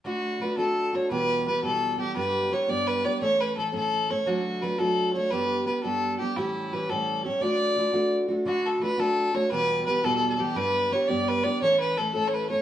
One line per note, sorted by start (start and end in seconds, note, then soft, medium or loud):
0.05 0.39 D3 medium
0.05 0.40 A3 medium
0.05 0.41 D4 medium
0.05 0.43 F#4 medium
0.05 0.42 F#4 medium
0.41 0.57 D3 medium
0.41 0.57 A3 soft
0.41 0.57 D4 medium
0.41 0.56 F#4 medium
0.41 0.57 B4 medium
0.57 0.94 D3 medium
0.57 0.94 A3 medium
0.57 0.94 D4 medium
0.57 0.92 F#4 medium
0.57 0.96 A4 medium
0.93 1.11 A3 soft
0.93 1.11 D4 soft
0.93 1.10 F#4 medium
0.93 1.10 C#5 medium
1.10 1.46 E2 medium
1.10 1.46 B2 medium
1.10 1.44 E3 medium
1.10 1.45 G3 medium
1.10 1.46 B3 medium
1.10 1.47 G4 medium
1.10 1.44 B4 medium
1.45 1.63 E3 soft
1.45 1.62 G3 medium
1.45 1.62 B3 medium
1.45 1.62 G4 medium
1.45 1.63 B4 medium
1.63 2.00 E2 soft
1.63 1.99 B2 soft
1.63 1.99 E3 soft
1.63 1.99 G3 medium
1.63 1.98 B3 soft
1.63 1.97 G4 medium
1.63 1.97 A4 medium
1.98 2.16 E3 soft
1.98 2.15 G3 soft
1.98 2.15 B3 soft
1.98 2.15 G4 soft
1.98 2.15 G4 medium
2.15 2.51 G2 medium
2.15 2.52 D3 medium
2.15 2.50 G3 medium
2.15 2.51 B3 medium
2.15 2.52 D4 medium
2.15 2.52 G4 medium
2.15 2.54 B4 medium
2.51 2.68 G3 soft
2.51 2.68 B3 medium
2.51 2.67 D4 medium
2.51 2.67 G4 medium
2.51 2.70 C#5 medium
2.68 3.05 G2 soft
2.68 3.05 D3 soft
2.68 3.05 G3 soft
2.68 3.04 B3 medium
2.68 3.04 D4 medium
2.68 3.03 G4 medium
2.68 2.89 D5 medium
2.87 3.06 B4 medium
3.04 3.21 G3 soft
3.04 3.22 B3 soft
3.04 3.21 D4 soft
3.04 3.21 G4 soft
3.04 3.20 D5 medium
3.21 3.57 A2 medium
3.21 3.55 E3 medium
3.21 3.56 A3 medium
3.21 3.57 C#4 medium
3.21 3.58 A4 medium
3.21 3.42 C#5 loud
3.40 3.57 B4 medium
3.57 3.73 E3 medium
3.57 3.72 A3 medium
3.57 3.71 C#4 medium
3.57 3.73 A4 medium
3.57 3.71 A4 medium
3.72 4.10 A2 soft
3.72 4.10 E3 soft
3.72 4.09 A3 medium
3.72 4.09 C#4 soft
3.72 4.08 A4 medium
3.72 4.12 A4 medium
4.09 4.25 A3 soft
4.09 4.27 C#4 soft
4.09 4.26 A4 soft
4.09 4.28 C#5 medium
4.26 4.62 D3 medium
4.26 4.61 F#3 medium
4.26 4.62 A3 medium
4.26 4.63 D4 medium
4.26 4.63 F#4 medium
4.62 4.79 F#3 soft
4.62 4.79 A3 medium
4.62 4.78 D4 medium
4.62 4.77 F#4 medium
4.62 4.80 B4 medium
4.78 5.16 D3 soft
4.78 5.15 F#3 medium
4.78 5.15 A3 medium
4.78 5.14 D4 soft
4.78 5.13 F#4 medium
4.78 5.13 A4 medium
5.14 5.32 A3 soft
5.14 5.31 D4 soft
5.14 5.31 F#4 soft
5.14 5.32 C#5 medium
5.30 5.67 G2 medium
5.30 5.67 D3 medium
5.30 5.65 G3 medium
5.30 5.66 B3 medium
5.30 5.67 D4 medium
5.30 5.67 G4 medium
5.30 5.66 B4 medium
5.66 5.83 G3 medium
5.66 5.83 B3 medium
5.66 5.83 D4 medium
5.66 5.82 G4 medium
5.66 5.82 B4 medium
5.83 6.20 G2 soft
5.83 6.20 D3 soft
5.83 6.20 G3 medium
5.83 6.20 B3 medium
5.83 6.19 D4 medium
5.83 6.18 G4 medium
5.83 6.17 A4 medium
6.19 6.36 G3 soft
6.19 6.37 B3 soft
6.19 6.37 D4 soft
6.19 6.38 G4 medium
6.19 6.36 G4 medium
6.36 6.72 A2 medium
6.36 6.70 E3 medium
6.36 6.72 G3 medium
6.36 6.73 C#4 medium
6.36 6.75 E4 medium
6.36 6.73 G4 medium
6.72 6.89 E3 medium
6.72 6.89 G3 medium
6.72 6.89 C#4 medium
6.72 6.88 G4 medium
6.72 6.91 B4 medium
6.89 7.26 A2 soft
6.89 7.26 E3 medium
6.89 7.26 G3 medium
6.89 7.24 C#4 medium
6.89 7.23 G4 medium
6.89 7.24 A4 medium
7.24 7.42 G3 soft
7.24 7.42 C#4 medium
7.24 7.41 G4 soft
7.24 7.42 C#5 medium
7.41 7.76 D3 medium
7.41 7.77 A3 medium
7.41 7.77 D4 medium
7.41 7.78 F#4 medium
7.41 8.13 D5 medium
7.77 7.93 D3 medium
7.77 7.93 A3 medium
7.77 7.92 D4 medium
7.77 7.92 F#4 medium
7.93 8.30 D3 soft
7.93 8.30 A3 medium
7.93 8.29 D4 medium
7.93 8.27 F#4 medium
8.28 8.45 A3 soft
8.28 8.46 D4 soft
8.28 8.46 F#4 medium
8.45 8.79 D3 medium
8.45 8.81 A3 medium
8.45 8.82 D4 medium
8.45 8.67 F#4 medium
8.45 8.83 F#4 medium
8.66 8.83 A4 medium
8.81 8.98 D3 medium
8.81 8.98 A3 medium
8.81 8.98 D4 medium
8.81 8.97 F#4 medium
8.81 9.01 B4 medium
8.98 9.35 D3 soft
8.98 9.35 A3 soft
8.98 9.33 D4 medium
8.98 9.32 F#4 medium
8.98 9.36 A4 medium
9.33 9.51 A3 soft
9.33 9.52 D4 soft
9.33 9.51 F#4 soft
9.33 9.51 C#5 medium
9.51 9.87 E2 medium
9.51 9.87 B2 medium
9.51 9.85 E3 medium
9.51 9.86 G3 medium
9.51 9.87 B3 medium
9.51 9.87 G4 medium
9.51 9.85 B4 medium
9.86 10.03 E3 soft
9.86 10.03 G3 medium
9.86 10.02 B3 medium
9.86 10.02 G4 medium
9.86 10.05 B4 medium
10.03 10.41 E2 soft
10.03 10.40 B2 medium
10.03 10.40 E3 medium
10.03 10.39 G3 medium
10.03 10.38 B3 medium
10.03 10.37 G4 medium
10.03 10.16 A4 medium
10.16 10.29 A4 medium
10.29 10.34 A4 medium
10.35 10.56 G4 medium
10.35 10.41 A4 medium
10.39 10.56 E3 soft
10.39 10.55 G3 soft
10.39 10.55 B3 medium
10.39 10.57 G4 medium
10.55 10.92 G2 medium
10.55 10.92 D3 medium
10.55 10.89 G3 medium
10.55 10.91 B3 medium
10.55 10.91 D4 medium
10.55 10.92 G4 medium
10.55 10.94 B4 loud
10.91 11.08 G3 medium
10.91 11.08 B3 medium
10.91 11.08 D4 medium
10.91 11.07 G4 medium
10.91 11.09 C#5 medium
11.08 11.46 G2 soft
11.08 11.45 D3 medium
11.08 11.45 G3 medium
11.08 11.44 B3 medium
11.08 11.44 D4 medium
11.08 11.43 G4 medium
11.08 11.29 D5 medium
11.28 11.45 B4 loud
11.44 11.61 G3 soft
11.44 11.62 B3 soft
11.44 11.62 D4 medium
11.44 11.61 G4 soft
11.44 11.61 D5 medium
11.62 11.97 A2 medium
11.62 11.96 E3 medium
11.62 11.97 A3 medium
11.62 11.98 C#4 medium
11.62 11.98 A4 medium
11.62 11.79 C#5 loud
11.80 11.99 B4 medium
11.97 12.14 E3 medium
11.97 12.14 A3 medium
11.97 12.13 C#4 medium
11.97 12.13 A4 medium
11.97 12.12 A4 medium
12.14 12.51 A2 soft
12.14 12.50 E3 soft
12.14 12.50 A3 soft
12.14 12.50 C#4 medium
12.14 12.48 A4 medium
12.14 12.29 A4 medium
12.28 12.35 C#5 medium
12.34 12.49 B4 medium
12.49 12.62 A3 soft
12.49 12.62 C#4 soft
12.49 12.62 A4 medium
12.49 12.62 C#5 medium